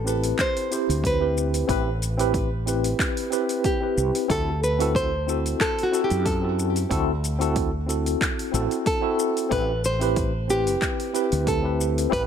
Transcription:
Already playing: A1 A4
0.04 C4 E4 G4 B4, shaker
0.24 open hi-hat, shaker
0.39 C5, kick, clap, open hi-hat, shaker
0.57 open hi-hat
0.71 C4 E4 G4 C5, open hi-hat, shaker
0.89 D2, open hi-hat, shaker
1.04 B4, kick, open hi-hat, shaker
1.20 C4 E4 G4 B4
1.38 shaker
1.54 open hi-hat, shaker
1.67 A1 C4 E4 G4 B4, kick, open hi-hat, shaker
2.02 open hi-hat, shaker
2.17 C4 E4 G4 B4, open hi-hat, shaker
2.34 kick, open hi-hat, shaker
2.66 C4 E4 G4 B4, open hi-hat, shaker
2.84 open hi-hat, shaker
2.99 kick, clap, open hi-hat, shaker
3.17 open hi-hat
3.30 C4 E4 G4 B4, open hi-hat, shaker
3.49 open hi-hat, shaker
3.64 G4, kick, open hi-hat, shaker
3.80 C4 E4 G4 B4
3.97 C2, shaker
4.15 open hi-hat, shaker
4.28 D2 C4 E4 F#4 A4, kick, open hi-hat, shaker
4.64 B4, shaker
4.79 C4 E4 F#4 A4, open hi-hat, shaker
4.95 C5, kick, open hi-hat, shaker
5.27 C4 E4 F#4 A4, shaker
5.46 open hi-hat, shaker
5.60 A4, kick, clap, open hi-hat, shaker
5.79 open hi-hat
5.83 F#4
5.91 C4 E4 F#4 A4, open hi-hat, shaker
6.04 G4
6.10 F#2, open hi-hat, shaker
6.25 A4, kick, open hi-hat, shaker
6.41 C4 E4 F#4 A4
6.59 shaker
6.76 open hi-hat, shaker
6.90 D2 C4 E4 F#4 A4, kick, open hi-hat, shaker
7.24 open hi-hat, shaker
7.39 C4 E4 F#4 A4, open hi-hat, shaker
7.56 kick, open hi-hat, shaker
7.86 C4 E4 F#4 A4, open hi-hat, shaker
8.06 open hi-hat, shaker
8.21 kick, clap, open hi-hat, shaker
8.39 open hi-hat
8.51 A1 C4 E4 F#4 A4, open hi-hat, shaker
8.71 open hi-hat, shaker
8.86 A4, kick, open hi-hat, shaker
9.01 C4 E4 F#4 A4
9.19 shaker
9.37 open hi-hat, shaker
9.49 A1 C4 E4 G4 B4, kick, open hi-hat, shaker
9.84 C5, shaker
10.00 C4 E4 G4 B4, open hi-hat, shaker
10.16 kick, open hi-hat, shaker
10.48 C4 E4 G4 B4, shaker
10.67 open hi-hat, shaker
10.82 kick, clap, open hi-hat, shaker
11.00 open hi-hat
11.13 C4 E4 G4 B4, open hi-hat, shaker
11.32 D2, open hi-hat, shaker
11.47 A4, kick, open hi-hat, shaker
11.62 C4 E4 G4 B4
11.81 shaker
11.98 open hi-hat, shaker
12.10 A1 C4 E4 G4 B4, kick, open hi-hat
12.14 shaker

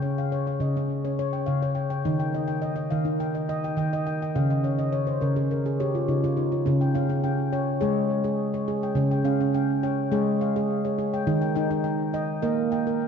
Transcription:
Already playing: C#3 G5
0.02 C#5
0.18 F5
0.32 C#5
0.47 C#5
0.60 C#3 D#5
0.77 C#4
1.05 C#5
1.19 C#5
1.33 G5
1.46 C#3 F5
1.62 C#5
1.75 G5
1.90 G5
2.05 D#3 D#4
2.20 G5
2.34 D#5
2.48 G5
2.62 D#5
2.76 D#5
2.90 D#3 F5
3.05 D#4
3.20 G5
3.35 D#5
3.49 D#5
3.64 G5
3.77 D#3 G5
3.93 D#5
4.07 G5
4.22 G5
4.35 C#3 C#4 F5
4.50 D#5
4.64 C#5
4.79 D#5
4.92 C#5
5.07 C5
5.21 C#3 A#4
5.36 C#4 G#4
5.51 A#4
5.66 G#4
5.80 G4 C#5
5.95 F4
6.08 C#3 D#4
6.24 F4 C#5
6.37 D#4
6.52 F4
6.66 C#3 C#4
6.81 G5
6.95 C#4 F5
7.09 C#4
7.24 G5
7.52 C#5 G5
7.81 G#3 G#4 C#5
8.24 G#4
8.54 C#5
8.68 G#4
8.83 G5
8.95 C#3 C#4
9.11 G5
9.25 C#4 F5
9.40 C#4
9.54 G5
9.83 C#5 G5
10.12 G#3 G#4 C#5
10.41 F5
10.56 G#4
10.85 C#5
10.98 G#4
11.14 G5
11.27 D#3 D#4
11.42 G5
11.56 D#4 G5
11.71 D#4
11.84 G5
12.14 D#5 G5
12.42 A#3 A#4 D#5
12.72 G5
12.87 A#4

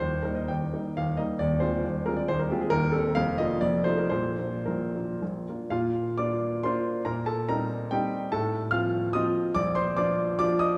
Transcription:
0.00 D#1 D#2 C5
0.23 G3 A#3 D#4 A#4
0.35 D#5
0.48 D#1 D#2 G5
0.73 G3 A#3 D#4
0.97 D#1 D#2 F5
1.17 G3 A#3 D#4 D#5
1.39 D#1 D#2 D5
1.60 G#3 C4 F4 C5
1.84 D#1 D#2
2.06 G#3 C4 F4 A#4
2.17 D5
2.28 D#1 D#2 C5
2.39 A#4
2.50 G#3 C4 F4 G4
2.61 G#4
2.70 D#1 D#2 A#4
2.92 G3 C4 G4 A4
3.15 F1 F2 F5
3.38 A#3 D4 F4 D#5
3.61 F1 F2 D5
3.84 A3 D#4 F4 C5
3.98 A#4
4.10 A#1 A#2 C5
4.38 A#3 D4 F4
4.66 A#1 A#2 A#4
4.95 A#3 D4 F4
5.22 A#1 A#2
5.49 A#3 D4 F4
5.70 A#2 F4 F5
6.18 A#3 D4 F4 D5 D6
6.63 A#3 D4 F4 C5 C6
7.05 A#2 A#4 A#5
7.26 A4 A5
7.49 G3 C4 D#4 A#4 A#5
7.91 G3 C4 D#4 G4 G5
8.32 A2 A4 A5
8.71 F3 C4 F4 F5 F6
9.13 F3 C4 F4 D#5 D#6
9.55 A#1 D5 D6
9.75 C5 C6
9.97 F3 D4 F4 D5 D6
10.39 F3 D4 F4 D5 D6
10.59 D#5 D#6

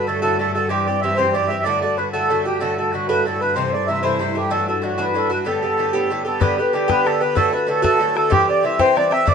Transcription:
Already playing: G2
0.06 A2 D3 A3 F#4 A4
0.21 A2 D3 A3 F#4 A4
0.39 A2 D3 A3 F#4 A4
0.53 D3 A3 F#4 A4
0.68 G2 E3 C4 G4
0.86 E3 C4 G4 D5
1.01 G2 E3 C4 G4 E5
1.16 G2 E3 C4 G4 C5
1.33 G2 E3 C4 G4 D5
1.47 C4 G4 E5
1.52 E3
1.63 A2 D3 A3 F#4 D5
1.81 D3 A3 F#4 D5
1.96 A2 D3 A3 F#4 B4
2.12 A2 D3 A3 F#4 A4
2.29 A2 D3 A3 F#4
2.45 D3 A3 F#4 G4
2.60 G2 A2 D3 A3 F#4 A4
2.77 D3 A3 F#4 A4
2.92 A2 D3 A3 F#4
3.07 A2 D3 A3 F#4 B4
3.24 A2 D3 A3 F#4 A4
3.40 D3 A3 F#4 B4
3.54 C3 E3 A3 E4 C5
3.73 E3 A3 E4 D5
3.87 C3 E3 A3 E4 E5
4.02 C3 E3 A3 E4 C5
4.19 C3 E3 A3 E4
4.35 E3 A3 E4 G4
4.50 A2 E3 D4 F#4 A4
4.68 E3 D4 F#4 A4
4.82 A2 E3 D4 F#4
4.97 A2 E3 D4 F#4 B4
5.14 A2 E3 D4 F#4 A4
5.30 E3 D4 F#4 B4
5.45 A2 D3 B3 G4 A4
5.62 D3 B3 G4
5.78 A2 D3 B3 G4
5.93 A2 D3 B3 G4
6.10 A2 D3 B3 G4
6.24 D3 B3 G4 A4
6.40 G2 D3 B3 G4 B4, bodhran
6.57 D3 B3 G4 B4
6.73 G2 D3 B3 G4
6.88 G2 D3 B3 G4 B4, bodhran
7.05 G2 D3 B3 G4 A4, bodhran
7.20 D3 B3 G4 B4
7.35 A2 D3 A3 F#4 A4, bodhran
7.52 D3 A3 F#4 B4
7.67 A2 D3 A3 F#4 A4
7.82 A2 D3 A3 F#4 A4, bodhran
7.96 A2 A4
8.00 D3 A3 F#4
8.07 A4
8.15 D3 A3 F#4 A4, bodhran
8.30 G2 E3 C4 G4, bodhran
8.48 E3 C4 G4 D5
8.63 G2 E3 C4 G4 E5
8.79 G2 E3 C4 G4 C5, bodhran
8.95 G2 E3 C4 G4 D5, bodhran
9.11 E3 C4 G4 E5, bodhran
9.26 A2 D3 A3 F#4 D5, bodhran
9.30 D5

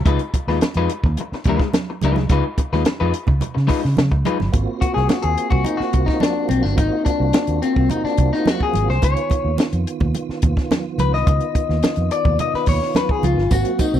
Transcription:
0.05 C#2 G#3 D#4 F4 B4, kick, closed hi-hat, muted conga
0.19 closed hi-hat
0.34 muted clean electric guitar stroke, kick, closed hi-hat, muted conga
0.48 D#2 G#3 D#4 F4 B4, snare
0.61 muted clean electric guitar stroke, snare, closed hi-hat, high conga
0.74 F2 G#3 D#4 F4 B4, closed hi-hat
0.90 muted clean electric guitar stroke, closed hi-hat
1.04 D#2, muted clean electric guitar stroke, kick
1.17 muted clean electric guitar stroke, closed hi-hat, muted conga
1.32 muted fingered electric bass stroke, muted clean electric guitar stroke, snare
1.44 D#2 G#3, kick, closed hi-hat, low conga
1.48 D#4 F4 B4
1.59 muted clean electric guitar stroke, kick, snare
1.73 snare, closed hi-hat, high conga
1.90 muted clean electric guitar stroke
2.02 C#2 G#3 D#4 F4 B4, closed hi-hat, high conga
2.16 C2, muted clean electric guitar stroke, snare, high conga
2.29 C#2 G#3 D#4 F4 B4, kick, closed hi-hat, muted conga
2.58 muted clean electric guitar stroke, kick, closed hi-hat, muted conga
2.72 D#2 G#3 D#4 F4 B4, snare
2.85 muted clean electric guitar stroke, snare, closed hi-hat, high conga
3.00 F2 G#3 D#4 F4 B4
3.13 muted clean electric guitar stroke, closed hi-hat
3.27 C#2, muted clean electric guitar stroke, kick, low conga
3.41 muted clean electric guitar stroke, closed hi-hat, muted conga, low conga
3.55 C#3, muted clean electric guitar stroke, snare
3.67 G#3 D#4 F4 B4, kick, open hi-hat
3.83 C#3, muted clean electric guitar stroke, snare
3.97 C#3, snare, closed hi-hat, high conga
4.11 C#2, muted clean electric guitar stroke, kick
4.25 G#3 D#4 F4 B4, closed hi-hat, high conga
4.39 G1, muted clean electric guitar stroke, snare, high conga
4.52 G#1 A#3 C4 F4 F#4, kick, closed hi-hat, muted conga
4.81 F#4, kick, closed hi-hat
4.94 C2 G#4, snare
5.08 F#4, snare, closed hi-hat, high conga
5.22 D#2 G#4, closed hi-hat
5.38 closed hi-hat
5.50 C2 F#4, kick, low conga
5.64 D#4, closed hi-hat, muted conga
5.77 F#4, muted fingered electric bass stroke, snare
5.93 C2, kick, closed hi-hat, low conga
6.06 D#4, kick, snare
6.20 D4, snare, closed hi-hat, high conga
6.49 B1 C4, closed hi-hat, high conga
6.63 G1 D4, snare
6.78 G#1 D#4, kick, closed hi-hat, muted conga
7.05 D4, kick, closed hi-hat
7.20 C2
7.33 snare, closed hi-hat, high conga
7.47 D#2, closed hi-hat
7.62 C4, closed hi-hat
7.76 C2, kick
7.90 D#4, closed hi-hat, muted conga, low conga
8.04 D4, muted fingered electric bass stroke, snare
8.17 C2, kick, closed hi-hat, low conga
8.33 D#4, snare
8.46 F#4, snare, closed hi-hat, high conga
8.60 G#4, kick
8.73 G#1, closed hi-hat, high conga
8.88 C2 C5, snare
9.02 C#2 D#3 B3 F4 C#5, kick, closed hi-hat, muted conga
9.17 closed hi-hat
9.30 kick, closed hi-hat, muted conga
9.45 D#2
9.58 snare, closed hi-hat, high conga
9.73 F2, closed hi-hat
9.87 closed hi-hat
10.00 D#2, kick, low conga
10.15 closed hi-hat, muted conga
10.29 muted fingered electric bass stroke, snare
10.42 D#2, kick, closed hi-hat, low conga
10.57 kick, snare
10.71 snare, closed hi-hat, high conga
10.98 C#2 B4, closed hi-hat, high conga
11.13 C2 D#5, snare
11.27 C#2, kick, closed hi-hat, muted conga
11.41 closed hi-hat
11.55 kick, closed hi-hat
11.69 D#2, snare
11.83 snare, closed hi-hat, high conga
11.96 F2, closed hi-hat
12.11 D5, closed hi-hat
12.25 D#2, kick, low conga
12.39 D#5, closed hi-hat, muted conga, low conga
12.54 B4, muted fingered electric bass stroke, snare
12.66 D#2 C#5, kick, open hi-hat, low conga
12.82 snare
12.95 B4, snare, closed hi-hat, high conga
13.09 G#4, kick
13.23 C#2 F4, closed hi-hat, high conga
13.37 G1, snare
13.50 G#1 F#3 A#3 C4 F#4, kick, closed hi-hat, tambourine, muted conga
13.65 closed hi-hat
13.79 D#4, kick, closed hi-hat, tambourine, muted conga
13.94 C2 C4, tambourine

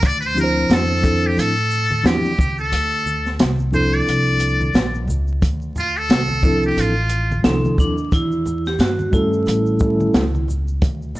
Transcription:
0.03 D2 D5, kick, closed hi-hat, shaker
0.20 B4, shaker
0.26 C5
0.35 F3 C4 D4 E4 G4, high conga, shaker
0.40 A#4 C5
0.57 shaker
0.70 F2, snare, closed hi-hat, shaker
0.74 A4
0.90 shaker
1.01 F3 C4 D4 E4 A4, kick, closed hi-hat, low conga, shaker
1.23 G4, shaker
1.37 A2 A4, closed hi-hat, shaker
1.57 shaker
1.71 shaker
1.91 high conga, shaker
2.03 E2 F3 C4 D4 E4 G4, snare, closed hi-hat, shaker
2.25 shaker
2.38 C#2, kick, low conga, shaker
2.40 shaker
2.58 A4, shaker
2.72 D2, closed hi-hat, shaker
2.92 shaker
3.06 high conga, shaker
3.26 snare, shaker
3.39 C2, snare, closed hi-hat, shaker
3.59 shaker
3.72 F3 C4 D4 E4 A4 C5, low conga, shaker
3.93 D5, shaker
4.07 C2, closed hi-hat, shaker
4.26 shaker
4.40 closed hi-hat, shaker
4.61 high conga, shaker
4.74 A#1, snare, closed hi-hat, shaker
4.95 shaker
5.08 C#2, low conga, shaker
5.10 shaker
5.28 shaker
5.42 D2, kick, closed hi-hat, shaker
5.62 shaker
5.76 F4, low conga, shaker
5.96 A4, shaker
6.09 C2, snare, closed hi-hat, shaker
6.29 high conga, shaker
6.42 F3 C4 D4 E4 A4, kick, low conga, shaker
6.63 G4, shaker
6.77 A1 F4, closed hi-hat, shaker
6.96 shaker
7.09 closed hi-hat, shaker
7.11 shaker
7.31 high conga, shaker
7.43 C2 F3 C4 D4 E4 A4, snare, closed hi-hat, high conga, shaker
7.65 high conga, shaker
7.78 D#2, kick, low conga, shaker
7.80 D4, shaker
7.98 shaker
8.12 E2 E4, kick, closed hi-hat, shaker
8.32 shaker
8.46 low conga, shaker
8.66 G4, snare, shaker
8.79 G2 F#4, snare, closed hi-hat, shaker
8.99 high conga, shaker
9.11 G3 A3 C#4 E4 A4, kick, low conga, shaker
9.33 shaker
9.46 A1, closed hi-hat, shaker
9.66 shaker
9.80 G3 A3 C#4 E4 A4, kick, shaker
10.00 high conga, shaker
10.14 C#2, snare, closed hi-hat, high conga, shaker
10.35 high conga, shaker
10.48 low conga, shaker
10.50 shaker
10.68 shaker
10.82 D2, kick, closed hi-hat, shaker
11.02 shaker
11.15 low conga, shaker

